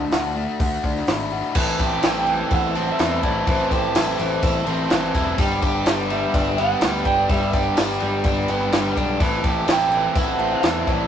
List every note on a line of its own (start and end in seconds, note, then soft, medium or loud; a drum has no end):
0.00 0.84 D3 medium
0.00 0.36 A3 medium
0.00 1.55 A3 medium
0.00 0.12 D4 medium
0.00 1.56 D4 medium
0.00 0.36 E4 medium
0.00 0.11 F#4 medium
0.00 1.56 F#4 medium
0.00 0.81 A5 medium
0.12 0.45 D2 medium
0.12 0.60 F#4 medium
0.12 snare loud
0.12 open hi-hat medium
0.36 1.56 A3 medium
0.60 0.77 D2 medium
0.60 1.31 F#4 medium
0.60 kick loud
0.60 open hi-hat medium
0.84 1.01 D2 medium
0.84 1.56 D4 medium
0.84 kick medium
0.97 snare soft
1.07 1.41 G#1 medium
1.07 1.56 E4 medium
1.07 snare loud
1.07 open hi-hat medium
1.32 1.56 F#4 medium
1.55 1.75 A1 loud
1.55 2.99 A2 medium
1.55 2.03 E3 medium
1.55 1.81 C4 loud
1.55 1.80 E4 medium
1.55 11.07 G4 medium
1.55 1.79 A4 loud
1.55 5.34 C5 medium
1.55 5.34 A5 medium
1.55 kick loud
1.55 crash loud
1.55 crash medium
1.79 1.99 A1 medium
1.79 2.04 C4 medium
1.79 2.04 E4 medium
1.79 3.71 G4 medium
1.79 2.05 A4 medium
1.79 kick medium
1.79 crash medium
2.03 2.43 A1 medium
2.03 2.98 E3 medium
2.03 2.76 C4 medium
2.03 2.75 E4 medium
2.03 2.74 A4 medium
2.03 snare loud
2.03 crash medium
2.08 2.54 G5 medium
2.27 2.98 E3 medium
2.27 crash medium
2.51 2.90 A1 medium
2.51 3.22 E4 medium
2.51 2.90 F#5 loud
2.51 kick loud
2.51 crash medium
2.75 2.99 C4 medium
2.75 3.00 E4 medium
2.75 3.00 A4 medium
2.75 crash medium
2.90 3.26 E5 medium
2.99 3.19 E2 medium
2.99 3.46 A2 medium
2.99 3.46 E3 medium
2.99 3.24 C4 loud
2.99 3.23 E4 medium
2.99 3.22 A4 loud
2.99 snare loud
2.99 crash medium
3.23 3.43 A1 medium
3.23 3.47 C4 medium
3.23 3.48 E4 medium
3.23 3.48 A4 medium
3.23 3.46 D5 medium
3.23 kick medium
3.23 crash medium
3.47 3.86 A1 loud
3.47 3.95 A2 loud
3.47 3.93 E3 medium
3.47 3.72 C4 loud
3.47 3.70 E4 loud
3.47 3.69 A4 loud
3.47 3.71 C5 medium
3.47 kick loud
3.47 crash medium
3.70 3.94 C4 medium
3.70 3.95 E4 medium
3.70 5.62 G4 medium
3.70 3.96 A4 medium
3.70 4.63 C5 medium
3.70 kick medium
3.70 crash medium
3.95 4.14 A1 medium
3.95 4.89 E3 medium
3.95 4.66 C4 medium
3.95 4.66 E4 medium
3.95 4.64 A4 medium
3.95 snare loud
3.95 crash loud
4.19 4.38 A1 medium
4.19 4.90 E3 medium
4.19 crash medium
4.43 4.62 A1 medium
4.43 5.13 E4 medium
4.43 kick loud
4.43 crash medium
4.65 4.86 A1 medium
4.65 4.89 C4 medium
4.65 4.90 E4 medium
4.65 4.90 A4 medium
4.65 crash medium
4.89 5.11 A1 medium
4.89 5.36 A2 loud
4.89 5.37 E3 loud
4.89 5.14 C4 loud
4.89 5.13 E4 loud
4.89 5.12 A4 medium
4.89 snare loud
4.89 crash medium
5.14 5.34 E1 medium
5.14 5.37 C4 medium
5.14 5.37 E4 medium
5.14 5.37 A4 medium
5.14 kick medium
5.14 crash medium
5.38 5.58 G1 loud
5.38 6.81 G2 loud
5.38 5.86 D3 medium
5.38 5.63 G3 medium
5.38 5.63 B3 loud
5.38 5.62 D4 loud
5.38 5.62 G4 loud
5.38 9.18 D5 medium
5.38 6.13 D5 medium
5.38 9.17 B5 medium
5.38 kick loud
5.38 crash medium
5.62 5.82 G1 medium
5.62 5.86 G3 medium
5.62 5.87 B3 medium
5.62 5.87 D4 medium
5.62 5.88 G4 medium
5.62 kick medium
5.62 crash medium
5.86 6.25 G1 medium
5.86 6.59 G3 medium
5.86 6.58 B3 medium
5.86 6.57 D4 medium
5.86 6.57 G4 medium
5.86 snare loud
5.86 crash medium
6.10 6.81 G3 medium
6.10 6.55 E5 medium
6.10 crash medium
6.34 6.73 G1 loud
6.34 7.05 D4 medium
6.34 kick loud
6.34 crash medium
6.57 6.81 G3 medium
6.57 6.81 B3 medium
6.57 6.82 D4 medium
6.57 6.83 G4 medium
6.57 7.05 F#5 loud
6.57 crash medium
6.81 7.02 D2 loud
6.81 7.28 G2 medium
6.81 7.29 D3 medium
6.81 7.07 G3 loud
6.81 7.06 B3 medium
6.81 7.05 D4 loud
6.81 7.06 G4 loud
6.81 snare loud
6.81 crash medium
7.05 7.25 G1 medium
7.05 7.30 G3 medium
7.05 7.30 B3 medium
7.05 7.30 D4 medium
7.05 7.31 G4 medium
7.05 7.29 G5 loud
7.05 kick medium
7.05 crash medium
7.29 7.68 G1 loud
7.29 7.77 G2 loud
7.29 7.77 D3 medium
7.29 7.55 G3 loud
7.29 7.54 B3 loud
7.29 7.53 D4 loud
7.29 7.53 G4 loud
7.29 7.54 E5 medium
7.29 kick loud
7.29 crash medium
7.53 7.76 G3 medium
7.53 7.76 B3 medium
7.53 7.77 D4 medium
7.53 7.79 G4 medium
7.53 7.98 D5 medium
7.53 kick medium
7.53 crash medium
7.77 7.97 G1 medium
7.77 8.51 G3 medium
7.77 8.50 B3 medium
7.77 8.49 D4 medium
7.77 8.49 G4 medium
7.77 snare loud
7.77 crash medium
8.00 8.21 G1 medium
8.00 8.72 G3 medium
8.00 crash medium
8.24 8.44 G1 loud
8.24 8.95 D4 medium
8.24 kick loud
8.24 crash medium
8.48 8.68 G1 medium
8.48 8.72 G3 medium
8.48 8.72 B3 medium
8.48 8.72 D4 medium
8.48 8.74 G4 medium
8.48 crash medium
8.72 8.92 G1 medium
8.72 9.19 G2 medium
8.72 9.19 D3 medium
8.72 8.98 G3 loud
8.72 8.96 B3 medium
8.72 8.95 D4 medium
8.72 8.95 G4 loud
8.72 snare loud
8.72 crash medium
8.96 9.16 B1 medium
8.96 9.20 G3 medium
8.96 9.20 B3 medium
8.96 9.19 D4 medium
8.96 9.21 G4 medium
8.96 kick medium
8.96 crash medium
9.20 9.40 A1 medium
9.20 10.63 A2 medium
9.20 9.66 E3 loud
9.20 9.45 C4 loud
9.20 9.43 E4 loud
9.20 9.42 A4 loud
9.20 11.07 C5 medium
9.20 11.07 A5 loud
9.20 kick loud
9.20 crash medium
9.43 9.64 A1 medium
9.43 9.68 C4 medium
9.43 9.68 E4 medium
9.43 11.07 G4 medium
9.43 9.69 A4 medium
9.43 kick medium
9.43 crash medium
9.67 10.07 A1 medium
9.67 10.63 E3 medium
9.67 10.40 C4 medium
9.67 10.39 E4 medium
9.67 10.37 A4 medium
9.67 snare loud
9.67 crash medium
9.71 10.14 G5 loud
9.92 10.63 E3 medium
9.92 crash medium
10.15 10.54 A1 loud
10.15 10.87 E4 medium
10.15 10.52 F#5 loud
10.15 kick loud
10.15 crash medium
10.39 10.63 C4 medium
10.39 10.63 E4 medium
10.39 10.64 A4 medium
10.39 crash medium
10.52 10.89 E5 medium
10.63 10.83 E2 medium
10.63 11.07 A2 medium
10.63 11.07 E3 medium
10.63 10.88 C4 loud
10.63 10.87 E4 loud
10.63 10.86 A4 loud
10.63 snare loud
10.63 crash medium
10.87 11.07 A1 medium
10.87 11.07 C4 medium
10.87 11.07 E4 medium
10.87 11.07 A4 medium
10.87 11.07 D5 medium
10.87 kick medium
10.87 crash medium